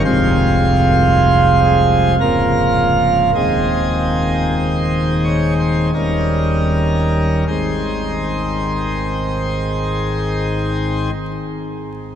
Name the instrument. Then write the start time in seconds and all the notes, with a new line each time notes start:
pipe organ
0.05 F1 C2 F2 C3 G#3 F4 C5
1.64 G#4
2.20 C#1 C#2 F3 A#3 F4 A#4
3.35 D#1 D#2 G#3 C4 D#4 G#4
4.58 C5
5.24 C#5
5.59 C5
5.94 D#1 D#2 G3 C#4 D#4 A#4
7.47 G#1 G#2 D#3 C4 D#4 G#4 C5